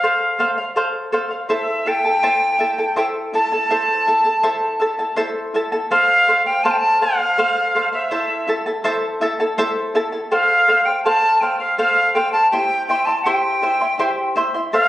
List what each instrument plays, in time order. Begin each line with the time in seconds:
Already playing: quena F5
0.03 charango A4 C5 F5
0.39 charango A4 C5 F5
0.58 charango C5 F5
0.76 charango A4 C5 F5
1.12 charango A4 C5 F5
1.31 charango C5 F5
1.49 charango E4 A4 C5 E5 A5, quena E5
1.86 charango E4 A4 E5 A5, quena G5
2.05 charango E4 A4 A5
2.23 charango E4 A4 C5 E5 A5
2.59 charango E4 A4 E5 A5
2.78 charango E4 A4 A5
2.96 charango E4 A4 C5 E5 A5, quena G5
3.33 charango E4 A4 E5 A5, quena A5
3.52 charango E4 A4 A5
3.70 charango E4 A4 C5 E5 A5
4.07 charango E4 A4 E5 A5
4.24 charango E4 A4 A5
4.43 charango E4 A4 C5 E5 A5
4.80 charango E4 A4 E5 A5
4.99 charango E4 A4 A5
5.16 charango E4 A4 C5 E5 A5
5.54 charango E4 A4 E5 A5
5.72 charango E4 A4 A5
5.91 charango A4 C5 F5, quena F5
6.28 charango A4 C5 F5
6.46 charango C5 F5, quena G5
6.63 charango A4 C5 F5, quena A5
6.70 quena G5
6.78 quena A5
7.01 charango A4 C5 F5, quena F5
7.20 charango C5 F5
7.38 charango A4 C5 F5
7.75 charango A4 C5 F5
7.93 charango C5 F5, quena E5
8.11 charango E4 A4 C5 E5 A5
8.48 charango E4 A4 E5 A5
8.66 charango E4 A4 A5
8.84 charango E4 A4 C5 E5 A5
9.21 charango E4 A4 E5 A5
9.40 charango E4 A4 A5
9.58 charango E4 A4 C5 E5 A5
9.95 charango E4 A4 E5 A5
10.12 charango E4 A4 A5
10.30 charango A4 C5 F5, quena F5 G5
10.68 charango A4 C5 F5
10.85 charango C5 F5, quena G5
11.03 charango A4 C5 F5, quena A5
11.36 quena G5 A5
11.41 charango A4 C5 F5
11.59 charango C5 F5, quena F5
11.78 charango A4 C5 F5, quena F5
12.14 charango A4 C5 F5, quena G5
12.32 charango C5 F5, quena A5
12.51 charango E4 G4 C5 E5 C6, quena G5
12.87 charango E4 C5 E5 C6, quena G5
13.05 charango E4 E5 C6, quena A5
13.22 charango G4 C5, quena G5
13.26 charango E4 E5 C6
13.62 charango E4 C5 E5 C6
13.81 charango E4 E5 C6
13.99 charango E4 G4 C5 E5 C6
14.36 charango E4 C5 E5 C6
14.54 charango E4 E5 C6
14.73 charango A4 C5 F5, quena F5